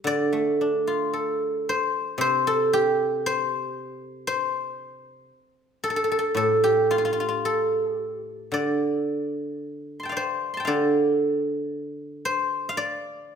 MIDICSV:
0, 0, Header, 1, 2, 480
1, 0, Start_track
1, 0, Tempo, 1071429
1, 31, Time_signature, 2, 2, 24, 8
1, 990, Tempo, 1038062
1, 2910, Tempo, 1090909
1, 4350, Tempo, 1038062
1, 6069, End_track
2, 0, Start_track
2, 0, Title_t, "Guzheng"
2, 0, Program_c, 0, 107
2, 0, Note_on_c, 0, 55, 54
2, 0, Note_on_c, 0, 67, 66
2, 19, Note_on_c, 0, 50, 51
2, 31, Note_on_c, 0, 74, 84
2, 105, Note_off_c, 0, 67, 0
2, 146, Note_on_c, 0, 57, 37
2, 273, Note_on_c, 0, 62, 35
2, 392, Note_on_c, 0, 65, 43
2, 508, Note_on_c, 0, 69, 41
2, 511, Note_off_c, 0, 55, 0
2, 758, Note_on_c, 0, 72, 76
2, 858, Note_off_c, 0, 74, 0
2, 976, Note_on_c, 0, 48, 58
2, 988, Note_off_c, 0, 72, 0
2, 990, Note_on_c, 0, 72, 92
2, 1105, Note_off_c, 0, 69, 0
2, 1108, Note_off_c, 0, 57, 0
2, 1111, Note_on_c, 0, 69, 81
2, 1232, Note_off_c, 0, 62, 0
2, 1232, Note_on_c, 0, 67, 81
2, 1351, Note_off_c, 0, 65, 0
2, 1466, Note_off_c, 0, 50, 0
2, 1475, Note_off_c, 0, 72, 0
2, 1477, Note_on_c, 0, 72, 83
2, 1942, Note_off_c, 0, 72, 0
2, 1944, Note_on_c, 0, 72, 85
2, 2125, Note_off_c, 0, 69, 0
2, 2321, Note_off_c, 0, 67, 0
2, 2414, Note_off_c, 0, 48, 0
2, 2666, Note_on_c, 0, 69, 72
2, 2695, Note_off_c, 0, 69, 0
2, 2696, Note_on_c, 0, 69, 52
2, 2723, Note_off_c, 0, 69, 0
2, 2725, Note_on_c, 0, 69, 59
2, 2759, Note_off_c, 0, 69, 0
2, 2761, Note_on_c, 0, 69, 51
2, 2794, Note_off_c, 0, 69, 0
2, 2796, Note_on_c, 0, 69, 62
2, 2827, Note_off_c, 0, 69, 0
2, 2829, Note_on_c, 0, 69, 53
2, 2860, Note_off_c, 0, 72, 0
2, 2902, Note_on_c, 0, 45, 51
2, 2911, Note_off_c, 0, 69, 0
2, 2912, Note_on_c, 0, 69, 78
2, 3031, Note_on_c, 0, 67, 72
2, 3150, Note_on_c, 0, 65, 64
2, 3181, Note_off_c, 0, 65, 0
2, 3182, Note_on_c, 0, 65, 45
2, 3210, Note_off_c, 0, 65, 0
2, 3212, Note_on_c, 0, 65, 52
2, 3245, Note_off_c, 0, 65, 0
2, 3247, Note_on_c, 0, 65, 47
2, 3277, Note_off_c, 0, 65, 0
2, 3279, Note_on_c, 0, 65, 52
2, 3314, Note_off_c, 0, 65, 0
2, 3316, Note_on_c, 0, 65, 45
2, 3388, Note_off_c, 0, 69, 0
2, 3389, Note_on_c, 0, 69, 66
2, 3609, Note_off_c, 0, 67, 0
2, 3609, Note_off_c, 0, 69, 0
2, 3609, Note_on_c, 0, 67, 66
2, 3858, Note_on_c, 0, 50, 47
2, 3865, Note_off_c, 0, 45, 0
2, 3867, Note_on_c, 0, 74, 72
2, 4354, Note_off_c, 0, 67, 0
2, 4432, Note_off_c, 0, 65, 0
2, 4517, Note_on_c, 0, 84, 31
2, 4534, Note_on_c, 0, 81, 33
2, 4543, Note_on_c, 0, 79, 38
2, 4562, Note_on_c, 0, 77, 39
2, 4571, Note_off_c, 0, 74, 0
2, 4573, Note_on_c, 0, 74, 39
2, 4596, Note_on_c, 0, 72, 72
2, 4765, Note_off_c, 0, 84, 0
2, 4767, Note_on_c, 0, 84, 40
2, 4781, Note_off_c, 0, 81, 0
2, 4783, Note_on_c, 0, 81, 41
2, 4794, Note_off_c, 0, 79, 0
2, 4796, Note_on_c, 0, 79, 46
2, 4816, Note_off_c, 0, 77, 0
2, 4818, Note_on_c, 0, 77, 52
2, 4825, Note_off_c, 0, 50, 0
2, 4829, Note_on_c, 0, 50, 57
2, 4830, Note_off_c, 0, 74, 0
2, 4831, Note_on_c, 0, 74, 75
2, 5371, Note_off_c, 0, 84, 0
2, 5452, Note_off_c, 0, 81, 0
2, 5512, Note_off_c, 0, 72, 0
2, 5514, Note_off_c, 0, 79, 0
2, 5560, Note_on_c, 0, 72, 79
2, 5589, Note_off_c, 0, 77, 0
2, 5685, Note_off_c, 0, 74, 0
2, 5762, Note_on_c, 0, 77, 70
2, 5801, Note_on_c, 0, 74, 82
2, 6069, Note_off_c, 0, 50, 0
2, 6069, Note_off_c, 0, 72, 0
2, 6069, Note_off_c, 0, 74, 0
2, 6069, Note_off_c, 0, 77, 0
2, 6069, End_track
0, 0, End_of_file